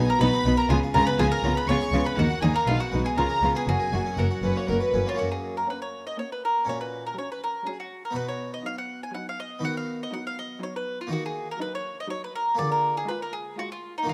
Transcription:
Already playing: B2 B3
0.09 A#4 A#5
0.21 B1 B2 B3 D#4 F#4 B4 B5
0.33 D#4
0.45 B1 B2 B3 D#4
0.57 A#4 A#5
0.69 C#2 C#3 B3 F4 G#4 G#5
0.83 F4
0.94 C#2 C#3 B3 F4 G#4 A#4 A#5
1.07 B3 B4 B5
1.19 C#2 C#3 B3 F4 G#4 G#5
1.32 G#4 A#4 A#5
1.43 C#2 C#3 B3 F4
1.57 B4 B5
1.68 C#2 C#3 B3 F4 C#5 C#6
1.82 G#4
1.92 C#2 C#3 B3 F4
2.06 B4 B5
2.17 D#2 D#3 A#3 D#4 F#4 F#5
2.30 F#4
2.42 D#2 D#3 A#3 D#4 G#4 G#5
2.54 A#3 A#4 A#5
2.66 B1 B2 G#3 D#4 F4 F5
2.79 D#4 F#4 F#5
2.91 B1 B2 G#3 B3 D#4
3.04 G#3 G#4 G#5
3.15 C#2 C#3 B3 F4 A#4 A#5
3.29 G#4
3.42 C#2 C#3 B3 F4
3.55 B3 G#4 G#5
3.67 F#1 F#2 A#3 F#4 G#4 G#5
3.80 A#4
3.92 F#1 F#2 A#3 F#4
4.06 C#4
4.17 F#1 F#2 A#3 F#4 A#4 F#5
4.31 F#4
4.42 F#1 F#2 A#3 C#4 B4
4.56 A#3 C#5
4.68 F#1 F#2 A#3 A#4
4.81 F#4 B4
4.93 F#1 F#2 A#3 C#4
5.06 A#3 F4 C#5
5.14 A#3 C#4 F#4
5.18 F#2 F#4
5.31 G#4
5.57 A#4
5.69 A#3 C#4 B4 F#5
5.82 C#5
6.07 D#5
6.18 A#3 C#4 C#5 F#5
6.32 B4
6.45 A#4
6.65 A#2 C#4 F#4
6.69 C#5
6.81 B4
7.06 A#4
7.17 F#3 C#4 C#5 F#5
7.32 B4
7.44 A#4
7.66 F#3 C#4 G#4 F#5
7.80 F#4
8.05 A#4
8.11 B3 D#4 F#4
8.15 B2 B4
8.28 C#5
8.54 D#5
8.64 F#3 D#4 F5 B5
8.78 F#5
9.03 G#5
9.14 F#3 D#4 F#5 B5
9.29 F5
9.40 D#5
9.59 D#3 B3 D#4 F#4
9.64 D#3 F#5
9.77 F5
10.03 D#5
10.12 F#3 D#4 F#5 B5
10.27 F5
10.39 D#5
10.61 F#3 D#4 C#5 B5
10.76 B4
11.01 F4
11.07 D#3 A#3 D#4 F#4
11.11 D#3 F#4
11.26 G#4
11.51 A#4
11.59 F#3 D#4 B4 A#5
11.75 C#5
12.00 D#5
12.10 F#3 D#4 C#5 A#5
12.24 B4
12.35 A#4
12.55 A#3 F4 G#4 D5
12.59 D3
12.72 A#4
12.97 G#4
13.08 G#3 F4 B4 A#5
13.22 A#4
13.33 G#4
13.57 G#3 F4 F#4 A#5
13.72 F4
13.98 D#4
14.03 A#3 D#4 F#4
14.07 D#3 F#3 D#4 F4 A#5

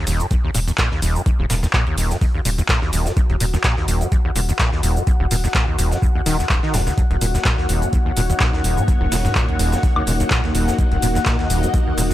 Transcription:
0.07 D#1 D#2, closed hi-hat, open hi-hat, shaker
0.12 F#5
0.20 F#2, closed hi-hat, shaker
0.31 D#2, kick, closed hi-hat, shaker
0.44 D#2
0.55 D#1 A#2, closed hi-hat, open hi-hat, shaker
0.68 D#2, closed hi-hat, shaker
0.78 A#2, kick, snare, clap, closed hi-hat, shaker
0.91 D#2, snare
1.02 D#1 D#2, closed hi-hat, open hi-hat, shaker
1.15 F#2, shaker
1.26 D#2, kick, closed hi-hat, shaker
1.39 D#1 D#2
1.50 D#1 A#2, snare, closed hi-hat, open hi-hat, shaker
1.63 D#2, snare, shaker
1.73 A#2, kick, clap, closed hi-hat, shaker
1.87 D#2, closed hi-hat
1.98 D#1 D#2, closed hi-hat, open hi-hat, shaker
2.11 F#2, snare, shaker
2.21 D#2, kick, open hi-hat, shaker
2.35 D#2
2.45 D#1 A#2, closed hi-hat, open hi-hat, shaker
2.58 D#2, closed hi-hat, shaker
2.69 A#2, kick, snare, clap, closed hi-hat, shaker
2.82 D#2, snare
2.93 D#1 D#2, closed hi-hat, open hi-hat, shaker
3.06 F#2, snare, shaker
3.17 D#2, kick, closed hi-hat, shaker
3.30 D#1 D#2, closed hi-hat
3.40 D#1 A#2, closed hi-hat, open hi-hat, shaker
3.54 D#2, snare, shaker
3.64 A#2, kick, snare, clap, closed hi-hat, shaker
3.77 D#2, snare
3.88 D#1 D#2, closed hi-hat, open hi-hat, shaker
4.01 F#2, closed hi-hat, shaker
4.12 D#2, kick, closed hi-hat, shaker
4.25 D#2
4.36 D#1 A#2, closed hi-hat, open hi-hat, shaker
4.49 D#2, closed hi-hat, shaker
4.59 A#2, kick, snare, clap, closed hi-hat, shaker
4.72 D#2, snare
4.83 D#1 D#2, closed hi-hat, open hi-hat, shaker
4.96 F#2, shaker
5.07 D#2, kick, closed hi-hat, shaker
5.20 D#1 D#2
5.31 D#1 A#2, closed hi-hat, open hi-hat, shaker
5.44 D#2, snare, shaker
5.54 A#2, kick, snare, clap, closed hi-hat, shaker
5.68 D#2
5.78 D#1 D#2, closed hi-hat, open hi-hat, shaker
5.92 F#2, snare, shaker
6.02 D#2, kick, shaker
6.15 D#2
6.26 D#1 D#3, closed hi-hat, open hi-hat, shaker
6.39 D#2, snare, shaker
6.49 D#1, kick, clap, closed hi-hat, shaker
6.63 D#3, snare
6.74 D#1 D#2, snare, closed hi-hat, open hi-hat, shaker
6.87 C#2, snare, shaker
6.98 D#2 A#3 D#4 F#4 C#5, kick, closed hi-hat, shaker
7.11 D#1 D#2, closed hi-hat
7.21 D#1 A#2, closed hi-hat, open hi-hat, shaker
7.34 D#2, snare, shaker
7.45 A#2, kick, snare, clap, closed hi-hat, shaker
7.58 D#2, snare
7.69 D#1 D#2, closed hi-hat, open hi-hat, shaker
7.82 F#2, closed hi-hat, shaker
7.93 D#2, kick, closed hi-hat, shaker
8.06 D#2
8.17 D#1 A#2, closed hi-hat, open hi-hat, shaker
8.30 D#2, closed hi-hat, shaker
8.40 A#2, kick, snare, clap, closed hi-hat, shaker
8.53 D#2, snare
8.64 D#1 D#2, closed hi-hat, open hi-hat, shaker
8.77 F#2, mid tom, shaker
8.88 D#2, kick, closed hi-hat, shaker
9.01 D#1 D#2
9.12 D#1 A#2, snare, closed hi-hat, open hi-hat, shaker
9.25 D#2, snare, mid tom, shaker
9.35 A#2, kick, clap, closed hi-hat, shaker
9.49 D#2, closed hi-hat
9.59 D#1 D#2, closed hi-hat, open hi-hat, shaker
9.72 F#2, snare, shaker
9.83 D#2, kick, open hi-hat, shaker
9.96 D#2, high woodblock
10.07 D#1 A#2, closed hi-hat, open hi-hat, shaker
10.20 D#2, closed hi-hat, shaker
10.30 A#2, kick, snare, clap, closed hi-hat, shaker
10.44 D#2, snare
10.55 D#1 D#2, closed hi-hat, open hi-hat, shaker
10.68 F#2, snare, shaker
10.79 D#2 D#5, kick, closed hi-hat, shaker
10.92 D#1 D#2, closed hi-hat
11.02 D#1 A#2, closed hi-hat, open hi-hat, shaker
11.15 D#2, snare, shaker
11.26 A#2, kick, snare, clap, closed hi-hat, shaker
11.39 D#2, snare
11.50 D#1 D#2, closed hi-hat, open hi-hat, shaker
11.63 F#2, closed hi-hat, shaker
11.74 D#2, kick, closed hi-hat, shaker
11.87 D#2
11.98 D#1 A#2, closed hi-hat, open hi-hat, shaker
12.11 D#2, closed hi-hat

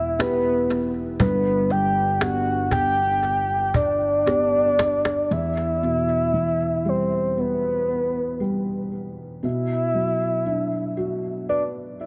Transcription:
Already playing: E1 E2 B3 E4 G4 E5
0.19 B3 E4 G4 B4, cajon slap
0.70 cajon slap
0.94 cajon slap
1.20 G1 G2 B4, cajon bass
1.69 G5, cajon slap
2.20 B3 D4 G4 F#5, cajon slap
2.71 G5, cajon bass
3.22 cajon slap
3.74 D5, cajon bass
4.01 cajon slap
4.26 B3 D4 G4, cajon slap
4.79 cajon slap
5.05 cajon slap
5.31 E2 E5
5.83 B2
6.33 E3
6.85 G3 C5
7.38 B3 B4
8.40 G3
9.43 B2 E5
9.94 F#3
10.46 D4
10.97 F#4
11.49 B4 D5
12.00 E5

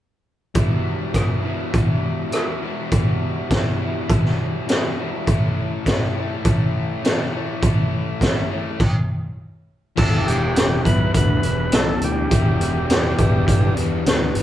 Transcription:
0.55 E2 B2 E3 G3 B3 E4, kick, closed hi-hat
1.14 E2 B2 E3 G3 B3 E4, kick, cross-stick, closed hi-hat
1.42 E2 B2 E3 G3 B3 E4
1.72 E2 B2 E3 G3 B3 E4, kick, closed hi-hat
2.32 E2 B2 E3 G3 B3 E4, cross-stick, closed hi-hat
2.61 E2 B2 E3 G3 B3 E4
2.91 E2 B2 E3 G3 B3 E4, kick, closed hi-hat
3.50 E2 B2 E3 G3 B3 E4, kick, snare, closed hi-hat
3.79 E2 B2 E3 G3 B3 E4
4.08 E2 B2 E3 G3 B3 E4, kick, closed hi-hat
4.25 snare
4.68 E2 B2 E3 G3 B3 E4, snare, closed hi-hat
4.98 E2 B2 E3 G3 B3 E4
5.27 A2 E3 A3 C#4 E4, kick, closed hi-hat
5.86 A2 E3 A3 C#4 E4, kick, snare, closed hi-hat
6.15 A2 E3 A3 C#4 E4
6.45 A2 E3 A3 C#4 E4, kick, closed hi-hat
7.04 A2 E3 A3 C#4 E4, snare, closed hi-hat
7.33 A2 E3 A3 C#4 E4
7.61 A2 E3 A3 C#4 E4, kick, closed hi-hat
8.20 A2 E3 A3 C#4 E4, kick, snare, closed hi-hat
8.49 A2 E3 A3 C#4 E4
8.80 kick, crash
9.96 E1 E2 B2 E3 G3 B3 E4 A4, kick, crash
10.26 E1 G4, closed hi-hat
10.56 E1, snare, closed hi-hat
10.85 B1 E3 G3 B3 E4 B4, kick, closed hi-hat
11.14 D2 B4, kick, closed hi-hat
11.43 E1, closed hi-hat
11.72 B1 A4, snare, closed hi-hat
12.02 D2 G4, closed hi-hat
12.30 E1 E2 B2 E3 G3 B3 E4, kick, closed hi-hat
12.60 E1, closed hi-hat
12.89 E2 B4 D5, snare, closed hi-hat
13.18 E1 E3 G3 B3 E4 B4 D5, kick, closed hi-hat
13.48 G1 B4 D5, kick, closed hi-hat
13.76 E2 G4 B4, closed hi-hat
14.05 D2 B4, snare, closed hi-hat
14.35 G#1, closed hi-hat

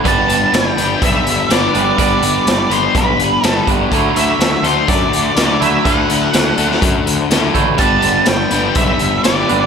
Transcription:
0.04 G1 G2 D3 G3 B3 D4 B4, kick, closed hi-hat
0.08 A5
0.28 G1, closed hi-hat
0.53 G1 G5, snare, closed hi-hat
0.77 G1 G3 B3 D4 B4, closed hi-hat
1.02 B1 E5, kick, closed hi-hat
1.27 G1, closed hi-hat
1.49 G1 G3 B3 D4 B4 D5, snare, closed hi-hat
1.73 G1 G2 D3 G3 B3 D4, closed hi-hat
1.97 G1 G2 D3 G3 B3 D4 D5, kick, closed hi-hat
2.01 B4
2.22 G1, closed hi-hat
2.47 G1, snare, closed hi-hat
2.69 G1 G3 B3 D4 B4 C5, closed hi-hat
2.95 B1 B4, kick, closed hi-hat
3.19 G1, closed hi-hat
3.43 G1 G3 B3 D4 A4 B4, snare, closed hi-hat
3.67 G1 G2 D3 G3 B3 D4, kick, closed hi-hat
3.91 D2 D3 F#3 A3 D4 E4 F#4 A4, kick, closed hi-hat
4.15 D2 E5, closed hi-hat
4.38 D2, snare, closed hi-hat
4.63 D2 D4 F#4 A4 C5, closed hi-hat
4.67 D3
4.88 F#2 D5, kick, closed hi-hat
5.11 D2, closed hi-hat
5.36 D2 D3 D4 F#4 A4, snare, closed hi-hat
5.60 D2 D3 F#3 A3 E4 E5, closed hi-hat
5.83 D2 D3 F#3 A3 D4 E4 F#4 F#5, kick, closed hi-hat
5.87 A4
6.10 D2, closed hi-hat
6.34 D2, snare, closed hi-hat
6.58 D2 D3 D4 F#4 A4, closed hi-hat
6.72 snare
6.82 F#2, kick, closed hi-hat
7.06 D2, closed hi-hat
7.30 D2 D3 D4 F#4 A4, snare, closed hi-hat
7.54 A1 D3 F#3 A3 E4, kick, closed hi-hat
7.78 G1 G2 D3 G3 B3 D4 B4 A5, kick, closed hi-hat
8.02 G1, closed hi-hat
8.26 G1 G5, snare, closed hi-hat
8.51 G1 G3 B3 D4 B4, closed hi-hat
8.75 B1 E5, kick, closed hi-hat
8.99 G1, closed hi-hat
9.23 G1 G3 B3 D4 B4 D5, snare, closed hi-hat
9.48 G1 G2 D3 G3 B3 D4, closed hi-hat

